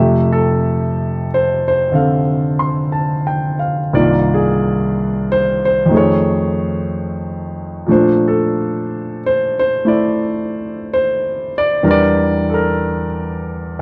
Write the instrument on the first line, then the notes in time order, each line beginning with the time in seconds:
grand piano
Already playing: F2 C3 A3 G4 E5 G#5
0.33 A4
1.34 C5
1.68 C5
1.92 D3 C4 A4 F5
2.59 C6
2.92 A5
3.27 G5
3.59 F5
3.93 C2 G2 D#3 A#3 F4 D5
4.34 G#4
5.32 C5
5.65 C5
5.86 F2 D#3
5.91 A3 G#4
5.97 C#5
7.86 A#2 F3 A3
7.91 D4 C5
8.28 A4
9.26 C5
9.59 C5
9.85 A3 E4 D5
10.94 C5
11.58 D5
11.83 E2 E3 G3 D4 A#4
11.91 D5
12.50 A4
12.54 A#4